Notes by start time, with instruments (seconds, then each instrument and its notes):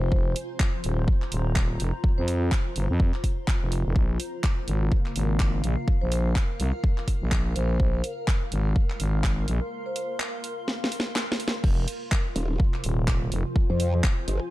Already playing: fm bass F1, analog synth pad C3 G#3, ambient pad F4 C5 A#5, vibraphone C5
0.12 fm bass F1, kick
0.36 open hi-hat
0.60 kick, clap
0.84 fm bass D#1, open hi-hat
1.08 kick
1.22 clap
1.32 fm bass D#1, open hi-hat
1.56 kick, clap
1.80 fm bass F1, open hi-hat
2.04 kick
2.18 fm bass F2, vibraphone C5
2.28 open hi-hat
2.52 kick, clap
2.76 fm bass G1, open hi-hat
2.90 fm bass F2
3.00 kick
3.14 clap
3.24 kick, open hi-hat
3.48 kick, clap
3.62 fm bass F1
3.72 open hi-hat
3.86 fm bass F1
3.95 fm bass A#1, analog synth pad C#3 A#3, ambient pad A#4, kick
4.18 ambient pad F5, open hi-hat
4.44 kick, clap
4.68 fm bass G#1, open hi-hat
4.92 kick
5.06 clap
5.16 fm bass G#1, open hi-hat
5.40 kick, clap
5.64 fm bass A#1, open hi-hat
5.88 kick
6.01 fm bass A#1, vibraphone C5
6.12 vibraphone C5, open hi-hat
6.36 kick, clap
6.60 fm bass C2, open hi-hat
6.84 kick
6.98 clap
7.08 kick, open hi-hat
7.22 fm bass A#1
7.32 kick, clap
7.56 fm bass A#1, vibraphone C5, open hi-hat
7.80 fm bass A#1, analog synth pad G#3, kick
8.04 open hi-hat
8.28 kick, clap
8.52 fm bass G#1, open hi-hat
8.60 ambient pad C6
8.76 kick
8.90 clap
9.00 fm bass G#1, open hi-hat
9.24 kick, clap
9.48 fm bass A#1, open hi-hat
9.86 vibraphone C5
9.96 vibraphone C5, open hi-hat
10.20 clap
10.44 open hi-hat
10.68 snare
10.84 snare
10.92 open hi-hat
11.00 snare
11.16 snare, clap
11.32 snare
11.40 open hi-hat
11.48 snare
11.64 fm bass F1, analog synth pad C3 F4, ambient pad F4, kick, crash
11.88 open hi-hat
12.12 ambient pad C5, kick, clap
12.36 wobble bass D#1, open hi-hat
12.44 ambient pad G#5
12.60 kick
12.74 clap
12.84 fm bass D#1, open hi-hat
13.08 kick, clap
13.32 fm bass F1, open hi-hat
13.56 kick
13.70 wobble bass F2, vibraphone C5
13.80 vibraphone C5, open hi-hat
14.04 kick, clap
14.28 wobble bass G1, open hi-hat